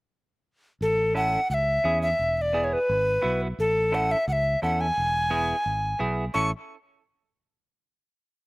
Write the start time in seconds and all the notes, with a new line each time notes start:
0.81 A1 A4
1.15 C#4 E4 A4 F#5
1.50 C#2 F#5
1.54 E5
1.84 E2 C#4 E4 G#4
2.02 E5
2.19 E1
2.37 E5
2.42 D5
2.53 B3 E4 G#4
2.64 C#5
2.73 B4
2.89 G#1
3.22 B1 B3 E4 F#4
3.59 A1 A4
3.92 C#4 E4 A4 F#5
4.11 E5
4.28 C#2 F#5
4.33 E5
4.62 E2 C#4 E4 A4 F#5
4.81 G#5
4.97 E1
5.30 B3 E4 G#4
5.66 G#1
5.99 B1 B3 E4 G#4
6.34 A1 C#4 E4 A4 C#6